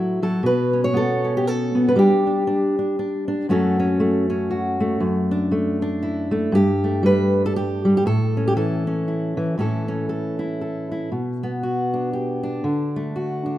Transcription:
Already playing: A2 F#3 A3 E4 F#4
0.22 F#3 A4
0.43 B2 B4
0.73 C#4
0.84 C#5
0.94 B3 A4
1.24 C#4
1.37 G4
1.47 A4
1.75 B3
1.88 B4
1.96 G3 D4 G4
2.27 D4
2.47 D4
2.79 D4
2.99 D4
3.28 D4
3.49 F#2 A3 C#4 F#4 A4
3.80 C#4
4.00 A3
4.30 C#4
4.51 F#4
4.80 A3
5.00 F#2
5.31 D4
5.51 A3
5.82 D4
6.03 E4
6.31 A3
6.52 G2 G4
6.84 A3
7.03 G3 B4
7.46 A4
7.56 G4
7.85 G3
7.97 G4
8.06 A2 A4
8.37 C#4
8.48 G4
8.57 E3 A4
8.87 C#4
9.08 E4
9.37 E3
9.58 A2 E3 C#4 E4 A4
9.88 C#4
10.09 A4
10.39 E4
10.61 A4
10.92 E4
11.12 B2
11.43 B3
11.63 F#4
11.94 D4
12.13 G4
12.43 D4
12.64 D3
12.96 A3
13.16 F#4
13.46 D4

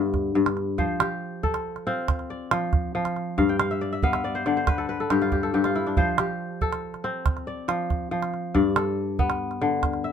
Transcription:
Already playing: G2 D3 B3 G4 E5
0.14 calabash thump, calabash click
0.35 G2
0.46 calabash click
0.57 calabash click
0.78 F3 C5, calabash thump
1.00 G4, calabash click
1.43 A4, calabash thump
1.54 calabash click
1.76 calabash click
1.87 C4 F4, calabash click
2.08 calabash thump, calabash click
2.19 calabash click
2.30 D5
2.51 F3, calabash click
2.73 calabash thump, calabash click
2.95 F3
3.05 calabash click
3.16 calabash click
3.38 G2 F5, calabash thump, calabash click
3.49 G5
3.60 F5, calabash click
3.71 E5
3.81 D5
3.93 E5
4.03 B3 F5, calabash thump
4.13 E5, calabash click
4.24 D5
4.35 C5
4.46 D3 D5, calabash click
4.57 C5
4.67 B4, calabash thump, calabash click
4.78 A4
4.89 B4
5.00 A4
5.10 G2 G4, calabash click
5.22 F4, calabash click
5.32 G4, calabash thump
5.43 A4
5.54 G2 G4
5.64 F4, calabash click
5.75 E4
5.87 D4
5.97 F3 C5, calabash thump
6.18 G4, calabash click
6.61 A4, calabash thump
6.73 calabash click
6.94 calabash click
7.04 C4, calabash click
7.26 calabash thump, calabash click
7.37 calabash click
7.47 D5
7.68 F3, calabash click
7.90 calabash thump, calabash click
8.11 F3
8.22 calabash click
8.34 calabash click
8.54 G2 D5, calabash thump
8.76 A4, calabash click
9.19 B3, calabash thump
9.30 calabash click
9.51 calabash click
9.61 D3, calabash click
9.83 calabash thump, calabash click
9.93 calabash click
10.04 E5

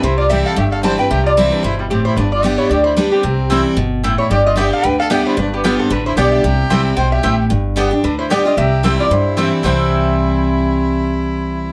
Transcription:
0.03 C2 C3 E4 C5
0.18 F4 D5
0.29 E3 G3 C4 E4 G4 E5
0.45 A4 F5
0.56 G1 G2 G4 E5
0.71 A4 F5
0.83 E3 G3 C4 E4 C5 A5
0.98 C4 E4 B4 G5
1.10 C2 C3 G4 E5
1.25 F4 D5
1.37 E3 G3 C4 E4 C5
1.52 D4 B4
1.63 G1 B2 E4 C5
1.79 G3 E4
1.90 A2 C4 G4
2.05 E4 C5
2.16 G1 G2 D4 B4
2.32 F4 D5
2.43 G3 B3 D4 G4 E5
2.58 E4 C#5
2.69 D2 D3 G4 D5
2.84 E4 C5
2.97 G3 B3 D4 G4 B4
3.12 C4 G4
3.23 C2 C3
3.50 E3 G3 C4 E4 C5 G5
3.76 G1 B2
4.03 A2 C4 E4 C5 G5
4.18 E4 C#5
4.30 G1 G2 G4 D5
4.46 F4 D#5
4.56 G3 B3 D4 G4 D5 E5 G5
4.73 A4 F5
4.83 D2 D3 B4 G5
4.99 A4 F5
5.10 G3 B3 D4 G4 D5 E5 G5
5.26 E4 C5
5.37 G1 G2 D4 B4
5.54 B3 G4
5.64 G3 B3 D4 F4 G4 D5 G5
5.79 C4 A4
5.90 A1 D3 D4 B4
6.06 E4 C5
6.17 B1 G3 B3 D4 G4 D5 G5
6.32 G4 E5
6.43 C2 C3
6.70 C2 E3 G3 C4 E4 C5 G5
6.97 B1 B2 C5 G5
7.12 G4 E5
7.23 A1 A2 C4 E4 C5 G5
7.50 G1 G2
7.76 G3 B3 D4 G4 D5 G5
7.91 D4 G4
8.03 D2 D3 D4 B4
8.19 E4 C5
8.30 G3 B3 D4 G4 D5 G5
8.44 D4 F4 G4 D#5
8.57 C2 C3 G4 E5
8.83 E3 G3 C4 E4 C5 G5
8.98 F4 D5
9.10 G2 E4 C5
9.37 E3 G3 C4 E4 C5 G5
9.63 C2 C3 E3 G3 C4 E4 C5 G5

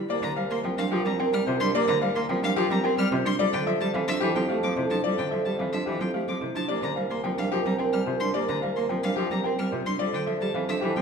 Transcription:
0.09 C2 A#3 G4 A#4 D5
0.22 D3 C5 A#5
0.36 G3 A#4 C5 F5
0.50 A#3 A#4 C6
0.64 F3 C4 A#4 G5
0.78 G3 D4 F5
0.91 F3 F4 G4
0.96 A#4
1.06 G3 C4 A#5
1.19 C4 A#4 G5
1.24 A#4
1.33 G3 C4 F6
1.47 C3 F4 C5
1.53 A#4
1.60 G3 D4 C6
1.75 A#3 G4 D5
1.81 A#4
1.88 D3 C5 A#5
2.02 G3 C5 F5
2.11 A#4
2.16 A#3 A#4 C6
2.29 F3 C4 G5
2.39 G3 A#4
2.44 D4 F5
2.56 F3 F4 G4
2.68 G3 C4 A#4 A#5
2.84 C4 A#4 G5
2.97 G3 C4 A#4 F6
3.12 C3 F4 C5
3.26 G3 D4 C6
3.39 F2 G3 F4 A4 D5
3.53 D3 A4 G5
3.67 F3 A4 E5
3.81 G3 G4 A5
3.94 E3 C4 A4 F5
4.08 F3 D4 E5
4.20 E3 E4 G4
4.26 A4
4.35 F3 C4 G5
4.49 A3 G4 F5
4.54 A4
4.63 F3 C4 D6
4.77 C3 E4 C5
4.82 A4
4.90 F3 D4 A5
5.04 G3 F4 D5
5.12 A4
5.18 D3 A4 G5
5.31 F3 A4 E5
5.41 A4
5.45 G3 G4 A5
5.59 E3 C4 F5
5.70 D4 A4 E5
5.74 F3
5.86 E3 E4 G4
5.99 F3 C4 A4 G5
6.14 A3 G4 F5
6.27 F3 C4 A4 D6
6.41 C3 E4 C5
6.55 F3 D4 A5
6.68 C2 A#3 G4 A#4 D5
6.83 D3 C5 A#5
6.96 G3 A#4 C5 F5
7.10 A#3 A#4 C6
7.24 F3 C4 A#4 G5
7.38 G3 D4 F5
7.52 F3 F4 G4
7.56 A#4
7.66 G3 C4 A#5
7.78 C4 A#4 G5
7.85 A#4
7.93 G3 C4 F6
8.07 C3 F4 C5
8.14 A#4
8.20 G3 D4 C6
8.34 A#3 G4 D5
8.43 A#4
8.48 D3 C5 A#5
8.62 G3 C5 F5
8.70 A#4
8.76 A#3 A#4 C6
8.89 F3 C4 G5
9.00 A#4 F5
9.04 G3 D4
9.16 F3 F4 G4
9.29 G3 C4 A#4 A#5
9.44 C4 A#4 G5
9.58 G3 C4 A#4 F6
9.72 C3 F4 C5
9.86 G3 D4 C6
9.99 F2 G3 F4 A4 D5
10.13 D3 A4 G5
10.27 F3 A4 E5
10.41 G3 G4 A5
10.54 E3 C4 A4 F5
10.69 F3 D4 E5
10.81 E3 E4 G4
10.86 A4
10.96 F3 C4 G5

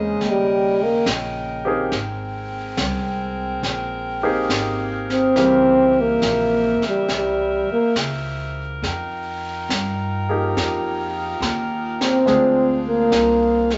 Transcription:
Already playing: E2 C#3 G#3 C4 D#4 G#4 A#4 C5 D#5
0.00 G#3
0.20 D#2 A#4 G5, brush sweep, snare
0.30 G3
0.83 A#3
1.06 A#1, snare, hi-hat pedal
1.65 A#3 C4 D#4 G4 G#4
1.92 G#1 G#3 C4 G5, brush sweep, snare
2.77 C2, snare, hi-hat pedal
3.63 A#1, brush sweep, snare
4.23 A#3 C4 D#4 G4 G#4
4.49 G#1, snare, hi-hat pedal
5.10 C4, snare
5.35 C2 C#3 E3 A#3 C4 G4 C5 E5, brush sweep, snare
6.01 A#3
6.22 A#1, snare, hi-hat pedal
6.81 muted upright bass stroke, snare
6.88 G3
7.08 C2, brush sweep, snare
7.17 G3
7.68 muted upright bass stroke
7.72 A#3
7.95 C#2, snare, hi-hat pedal
8.82 F2 D#4 F4 G5, brush sweep, snare
9.69 G2, snare, hi-hat pedal
10.29 F3 A#3 D#4 G4 G#4
10.55 F2, brush sweep, snare
11.40 D#2, snare, hi-hat pedal
12.01 C4, snare
12.26 D2 F3 G#3 C4 D4 G#4 C5 F5, brush sweep, snare
12.88 A#3
13.11 C2, snare, hi-hat pedal
13.70 G#3, snare

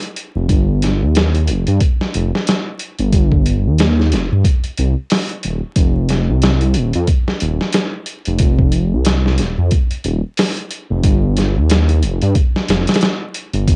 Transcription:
0.03 closed hi-hat
0.16 closed hi-hat
0.36 F1
0.49 G1, kick, closed hi-hat
0.82 snare, closed hi-hat
1.02 D#2
1.15 snare, closed hi-hat
1.35 closed hi-hat
1.48 F1, closed hi-hat
1.67 G2, closed hi-hat
1.80 kick, closed hi-hat
2.01 snare
2.14 F1, closed hi-hat
2.35 snare
2.47 snare, closed hi-hat
2.79 closed hi-hat
2.99 G1, closed hi-hat
3.13 G1, kick, closed hi-hat
3.32 kick
3.46 closed hi-hat
3.66 D#2
3.78 snare, closed hi-hat
4.00 snare
4.12 F1, snare, closed hi-hat
4.32 G2
4.44 kick, closed hi-hat
4.64 closed hi-hat
4.78 C2, closed hi-hat
5.10 snare, open hi-hat
5.29 closed hi-hat
5.43 D#1, closed hi-hat
5.76 F1, kick, closed hi-hat
6.09 snare, closed hi-hat
6.29 C2
6.42 snare, closed hi-hat
6.61 closed hi-hat
6.74 D#1, closed hi-hat
6.94 F2, closed hi-hat
7.08 kick, closed hi-hat
7.28 snare
7.40 D#1, closed hi-hat
7.61 snare
7.73 snare, closed hi-hat
8.06 closed hi-hat
8.25 F1, closed hi-hat
8.39 F1, kick, closed hi-hat
8.59 kick
8.72 closed hi-hat
8.93 C2
9.05 snare, closed hi-hat
9.26 snare
9.38 D#1, snare, closed hi-hat
9.58 F2
9.71 kick, closed hi-hat
9.91 closed hi-hat
10.04 D#1, closed hi-hat
10.37 snare, open hi-hat
10.57 closed hi-hat
10.71 closed hi-hat
10.90 F1
11.03 G1, kick, closed hi-hat
11.37 snare, closed hi-hat
11.57 D#2
11.70 snare, closed hi-hat
11.89 closed hi-hat
12.03 F1, closed hi-hat
12.22 G2, closed hi-hat
12.35 kick, closed hi-hat
12.56 snare
12.69 F1, snare, closed hi-hat
12.87 snare, closed hi-hat
12.94 snare, closed hi-hat
13.01 snare, closed hi-hat
13.35 closed hi-hat
13.54 G1, closed hi-hat
13.68 G1, kick, closed hi-hat

